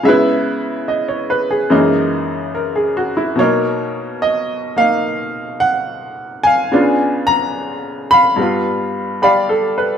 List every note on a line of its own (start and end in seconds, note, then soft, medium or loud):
0.03 1.69 C#3 medium
0.03 1.69 G#3 medium
0.03 1.72 B3 soft
0.03 1.68 E5 medium
0.08 1.73 E4 medium
0.08 1.28 B4 soft
0.88 1.28 D#5 soft
1.08 1.45 C#5 soft
1.30 1.56 B4 medium
1.51 1.80 G#4 medium
1.70 3.37 F#2 medium
1.70 3.37 C#3 soft
1.70 3.38 E3 soft
1.70 3.38 G#3 soft
1.70 3.37 A#3 soft
1.70 3.38 D#4 medium
2.55 2.94 A#4 soft
2.76 3.12 G#4 soft
2.97 3.22 F#4 medium
3.17 3.46 E4 soft
3.35 6.70 B2 soft
3.35 6.70 F#3 medium
3.35 4.75 A#3 soft
3.35 4.24 C#5 medium
3.40 4.78 D#4 medium
3.40 5.02 A#4 medium
4.22 4.80 D#5 medium
4.76 6.70 A#3 soft
4.76 6.72 D#4 medium
4.76 5.57 F5 medium
5.60 6.40 F#5 medium
6.43 8.08 F5 medium
6.43 7.23 G#5 medium
6.72 8.38 C#3 soft
6.72 8.38 B3 soft
6.72 8.39 D4 medium
6.72 8.39 F4 medium
7.27 8.06 A#5 loud
8.11 9.23 F5 medium
8.11 9.21 B5 loud
8.36 9.98 G2 soft
8.36 9.98 G3 soft
8.36 9.98 B3 soft
8.41 9.98 F4 soft
9.22 9.74 G4 soft
9.22 9.98 D5 medium
9.22 9.98 F5 medium
9.22 9.98 B5 medium
9.49 9.92 A4 soft
9.78 9.98 B4 medium